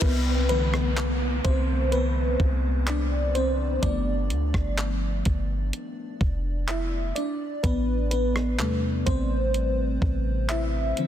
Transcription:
0.01 1.41 C2 loud
0.01 0.47 B3 medium
0.01 0.48 B4 loud
0.01 kick loud
0.01 closed hi-hat medium
0.01 crash loud
0.01 downlifter medium
0.49 1.13 D3 medium
0.49 1.13 E3 medium
0.49 1.13 A3 soft
0.49 1.42 B3 medium
0.49 1.47 B4 medium
0.49 closed hi-hat medium
0.74 cross-stick medium
0.97 clap loud
0.97 closed hi-hat medium
1.44 2.36 C2 loud
1.44 1.90 C4 medium
1.44 1.94 C5 loud
1.44 kick loud
1.44 closed hi-hat medium
1.92 2.84 B3 medium
1.92 2.83 B4 medium
1.92 closed hi-hat medium
2.40 3.79 C2 loud
2.40 kick loud
2.87 3.33 D4 medium
2.87 3.36 D5 medium
2.87 clap loud
2.87 closed hi-hat medium
3.35 3.80 C4 medium
3.35 3.79 C5 medium
3.35 closed hi-hat medium
3.82 4.32 G1 loud
3.82 7.12 F3 medium
3.82 7.13 A3 medium
3.82 7.13 B3 medium
3.82 5.22 D4 medium
3.82 5.21 D5 medium
3.82 kick loud
3.82 closed hi-hat medium
4.30 4.53 D2 loud
4.30 closed hi-hat medium
4.54 5.23 G1 loud
4.54 kick loud
4.54 cross-stick medium
4.78 clap loud
4.78 closed hi-hat medium
5.25 5.72 G1 loud
5.25 kick loud
5.25 closed hi-hat medium
5.73 closed hi-hat medium
6.21 7.12 F1 loud
6.21 kick loud
6.68 7.14 E4 medium
6.68 7.17 E5 medium
6.68 clap loud
6.68 closed hi-hat medium
7.15 7.61 D4 medium
7.15 7.65 D5 medium
7.15 closed hi-hat medium
7.63 8.61 A1 loud
7.63 8.09 B3 medium
7.63 8.10 B4 medium
7.63 kick loud
7.63 closed hi-hat medium
8.11 9.03 B3 medium
8.11 9.09 B4 medium
8.11 closed hi-hat medium
8.36 cross-stick medium
8.59 9.04 E2 medium
8.59 9.98 C3 medium
8.59 9.98 G3 medium
8.59 9.99 A3 medium
8.59 clap loud
8.59 closed hi-hat medium
9.06 9.98 A1 loud
9.06 10.46 C4 medium
9.06 10.54 C5 loud
9.06 kick loud
9.06 closed hi-hat medium
9.54 closed hi-hat medium
10.02 10.93 A1 loud
10.02 kick loud
10.49 11.07 E4 medium
10.49 11.07 E5 loud
10.49 clap loud
10.49 closed hi-hat medium
10.97 11.07 D3 medium
10.97 11.07 F3 medium
10.97 11.07 C4 medium
10.97 closed hi-hat medium

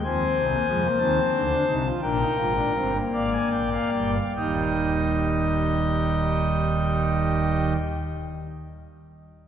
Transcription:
0.04 0.24 F2 medium
0.04 0.24 F3 medium
0.04 0.45 C4 medium
0.04 1.74 C5 medium
0.04 0.87 G#5 medium
0.36 0.56 C2 loud
0.36 0.56 C3 medium
0.52 0.66 A#3 medium
0.67 0.88 F2 loud
0.67 0.87 F3 loud
0.67 0.81 G#3 medium
0.84 0.98 A#3 medium
0.99 1.20 D#2 loud
0.99 1.20 D#3 loud
0.99 1.43 C4 medium
0.99 1.87 A5 medium
1.32 1.54 D2 medium
1.32 1.54 D3 medium
1.50 1.65 D4 medium
1.67 1.89 C2 medium
1.67 1.89 C3 medium
1.67 1.82 D#4 medium
1.86 2.00 F4 medium
2.02 2.24 A#1 medium
2.02 2.24 A#2 medium
2.02 2.18 D4 medium
2.02 2.97 A#4 medium
2.02 2.97 G5 medium
2.20 2.35 D#4 medium
2.38 2.61 G#1 medium
2.38 2.61 G#2 medium
2.38 2.53 F4 loud
2.57 2.72 D4 medium
2.75 2.98 G1 medium
2.75 2.99 G2 medium
2.75 2.91 C4 medium
2.95 4.16 A#3 medium
3.13 3.37 G#1 medium
3.13 3.37 G#2 medium
3.13 4.18 D5 medium
3.13 3.30 F5 medium
3.32 3.49 G#5 medium
3.52 3.77 A#1 medium
3.52 3.77 A#2 medium
3.52 3.69 G5 medium
3.72 3.90 F5 medium
3.93 4.19 G1 medium
3.93 4.19 G2 medium
3.93 4.11 G5 medium
4.14 4.32 F5 medium
4.36 7.73 D#1 medium
4.36 7.73 D#2 medium
4.36 7.76 D#3 medium
4.36 7.76 G3 medium
4.36 7.73 D#4 medium
4.36 7.73 D#5 medium
4.36 7.73 G5 medium

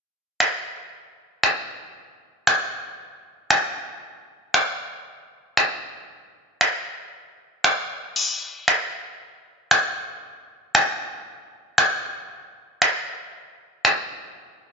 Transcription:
0.40 finger snap loud
1.43 finger snap loud
2.47 finger snap loud
3.50 finger snap loud
4.54 finger snap loud
5.57 finger snap loud
6.61 finger snap loud
7.64 finger snap loud
8.16 crash medium
8.68 finger snap loud
9.71 finger snap loud
10.75 finger snap loud
11.78 finger snap loud
12.82 finger snap loud
13.85 finger snap loud

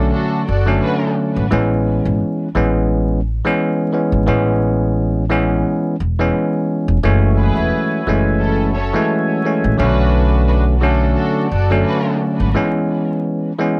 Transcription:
0.00 0.42 D3 medium
0.00 0.43 F#3 medium
0.00 0.43 A3 medium
0.00 0.43 C#4 loud
0.12 0.40 D4 medium
0.12 0.40 F#4 medium
0.12 0.40 A4 loud
0.48 0.78 F#1 loud
0.48 0.76 F#4 loud
0.48 0.76 A4 medium
0.48 0.76 D5 loud
0.66 1.45 D3 medium
0.66 1.45 F#3 medium
0.66 1.45 A3 medium
0.66 1.46 C#4 loud
0.82 1.10 D4 loud
0.82 1.10 F#4 loud
0.82 1.10 B4 loud
1.36 1.49 G#1 medium
1.51 1.97 A1 loud
1.51 2.47 E3 loud
1.51 2.48 G#3 medium
1.51 2.48 B3 medium
1.51 2.48 C#4 loud
2.05 2.18 G#1 medium
2.55 3.39 A1 medium
2.55 3.19 E3 loud
2.55 3.19 G#3 medium
2.55 3.20 B3 medium
2.55 3.20 C#4 loud
3.44 3.90 E3 loud
3.44 3.90 G#3 medium
3.44 3.91 B3 medium
3.44 3.91 C#4 loud
3.92 4.25 E3 medium
3.92 4.25 G#3 medium
3.92 4.25 B3 medium
3.92 4.26 C#4 medium
4.12 4.25 G#1 loud
4.27 5.62 A1 loud
4.27 5.23 E3 medium
4.27 5.24 G#3 medium
4.27 5.24 B3 medium
4.27 5.24 C#4 loud
5.29 5.94 E3 loud
5.29 5.95 G#3 medium
5.29 5.95 B3 medium
5.29 5.95 C#4 loud
6.00 6.29 E1 loud
6.19 6.97 E3 medium
6.19 6.97 G#3 medium
6.19 6.98 B3 medium
6.19 6.98 C#4 loud
6.88 7.01 E1 loud
7.03 7.49 F#1 loud
7.03 7.99 E3 medium
7.03 9.77 F#3 medium
7.03 8.00 G#3 medium
7.03 8.00 A3 loud
7.03 8.00 C#4 loud
7.03 12.51 F#4 medium
7.03 9.77 C#5 medium
7.03 9.77 E5 medium
7.03 9.77 G#5 medium
7.38 8.03 E4 loud
7.38 8.03 G#4 medium
7.38 8.03 B4 loud
7.57 7.70 E1 medium
8.07 8.91 F#1 medium
8.07 8.71 E3 medium
8.07 8.71 G#3 medium
8.07 8.72 A3 medium
8.07 8.72 C#4 loud
8.42 8.70 C#4 medium
8.42 8.70 E4 medium
8.42 8.70 A4 loud
8.76 9.03 C#4 medium
8.76 9.03 A4 medium
8.76 9.03 C#5 loud
8.93 9.40 E3 medium
8.93 9.41 G#3 medium
8.93 9.41 A3 medium
8.93 9.41 C#4 loud
9.44 9.77 E3 medium
9.44 9.77 G#3 medium
9.44 9.77 A3 medium
9.44 9.78 C#4 medium
9.64 9.77 A1 loud
9.78 11.13 B1 loud
9.78 10.75 D3 medium
9.78 10.75 F#3 medium
9.78 10.75 A3 medium
9.78 10.76 C#4 loud
9.78 10.45 D4 loud
9.78 10.45 F#4 loud
9.78 10.45 B4 loud
10.47 10.63 D4 medium
10.47 10.63 F#4 medium
10.47 10.63 B4 loud
10.81 11.46 D3 medium
10.81 11.46 F#3 medium
10.81 11.47 A3 medium
10.81 11.47 C#4 loud
10.81 11.10 D4 medium
10.81 11.10 F#4 medium
10.81 11.10 A4 loud
11.16 11.44 D4 medium
11.16 11.44 F#4 medium
11.16 11.44 A4 loud
11.51 11.81 F#1 loud
11.51 11.79 F#4 medium
11.51 11.79 A4 loud
11.51 11.79 D5 loud
11.70 12.49 D3 medium
11.70 12.49 F#3 medium
11.70 12.49 A3 medium
11.70 12.50 C#4 loud
11.86 12.14 D4 loud
11.86 12.14 F#4 loud
11.86 12.14 B4 loud
12.40 12.53 G#1 medium
12.54 13.51 E3 loud
12.54 13.51 G#3 medium
12.54 13.51 B3 medium
12.54 13.52 C#4 loud
13.58 13.80 E3 medium
13.58 13.80 G#3 medium
13.58 13.80 B3 medium
13.58 13.80 C#4 loud

